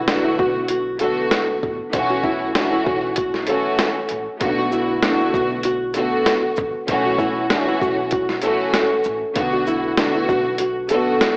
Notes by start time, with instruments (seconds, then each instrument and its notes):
0.07 string section D3 A3 B3 F#4, nylon-string guitar D4, snare, closed hi-hat
0.24 nylon-string guitar E4
0.39 upright bass B1, nylon-string guitar F#4, kick
0.68 nylon-string guitar F#4, closed hi-hat
0.99 string section D3 A3 B3 F#4, nylon-string guitar A4, closed hi-hat
1.31 snare, closed hi-hat
1.63 upright bass A1, kick
1.92 upright bass B1, string section E3 A3 C#4 F#4, kick, closed hi-hat
2.10 nylon-string guitar F#4
2.24 nylon-string guitar E4, kick
2.55 string section E3 A3 C#4 F#4, nylon-string guitar D4, snare, closed hi-hat
2.72 nylon-string guitar E4
2.86 upright bass B1, nylon-string guitar F#4, kick
3.16 nylon-string guitar F#4, kick, closed hi-hat
3.34 snare
3.46 string section E3 A3 C#4 F#4, nylon-string guitar A4, closed hi-hat
3.79 snare, closed hi-hat
4.09 upright bass A1, closed hi-hat
4.39 upright bass B1, string section D3 A3 B3 F#4, kick, closed hi-hat
4.58 nylon-string guitar F#4
4.72 nylon-string guitar E4, shaker
5.02 string section D3 A3 B3 F#4, nylon-string guitar D4, snare, closed hi-hat
5.21 nylon-string guitar E4
5.34 upright bass B1, nylon-string guitar F#4, kick, shaker
5.63 nylon-string guitar F#4, closed hi-hat
5.94 string section D3 A3 B3 F#4, nylon-string guitar A4, closed hi-hat, shaker
6.26 snare, closed hi-hat
6.56 upright bass A1, kick, shaker
6.87 upright bass B1, string section E3 A3 C#4 F#4, kick, closed hi-hat
7.06 nylon-string guitar F#4
7.18 nylon-string guitar E4, kick, shaker
7.50 string section E3 A3 C#4 F#4, nylon-string guitar D4, snare, closed hi-hat
7.68 nylon-string guitar E4
7.81 upright bass B1, nylon-string guitar F#4, kick, shaker
8.11 nylon-string guitar F#4, kick, closed hi-hat
8.29 snare
8.41 string section E3 A3 C#4 F#4, nylon-string guitar A4, closed hi-hat, shaker
8.74 snare, closed hi-hat
9.04 upright bass A1, shaker
9.34 upright bass B1, string section D3 A3 B3 F#4, kick, closed hi-hat
9.53 nylon-string guitar F#4
9.67 nylon-string guitar E4, shaker
9.97 string section D3 A3 B3 F#4, nylon-string guitar D4, snare, closed hi-hat
10.14 nylon-string guitar E4
10.29 upright bass B1, nylon-string guitar F#4, kick, shaker
10.58 nylon-string guitar F#4, closed hi-hat
10.89 string section D3 A3 B3 F#4, nylon-string guitar A4, closed hi-hat, shaker
11.21 snare, closed hi-hat